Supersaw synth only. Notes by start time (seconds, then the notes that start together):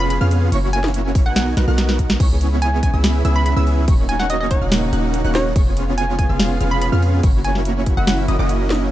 Already playing: B3 C#4 F4 G#4 F5
0.21 B3 C#4 F4 G#4 F5
0.52 A#3 C#4 E4 F#4 C#5
1.26 B3 D#4 F#4 A#4 G#5
1.57 B3 D#4 F#4 A#4 F#5
1.68 B3 D#4 F#4 A#4 F#5
2.20 B3 C#4 E4 G#4 C#5
2.94 B3 C#4 E4 G#4 E5
3.25 B3 C#4 E4 G#4 E5
3.57 B3 C#4 E4 G#4 E5
4.62 A#3 C#4 D#4 F#4 F#5
4.93 A#3 C#4 D#4 F#4 F#5
5.24 A#3 C#4 D#4 F#4 F#5
5.56 B3 C#4 G#4 C#5
6.29 B3 C#4 F4 G#4 F5
6.61 B3 C#4 F4 G#4 F5
6.92 B3 C#4 F4 G#4 F5
7.97 A#3 C#4 E4 F#4 E5
8.28 A#3 C#4 E4 F#4 D#5
8.39 A#3 C#4 E4 F#4 D#5